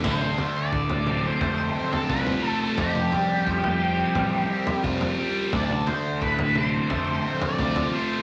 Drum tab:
CC |x---------------|----------------|----------------|
T2 |-o----o-----o---|-o----------o---|-o----o-----o---|
FT |o-o--o--o--o-o--|o-o--o--o--o-o--|o-o--o--o--o-o--|
BD |o---o---o---o---|o---o---o---o---|o---o---o---o---|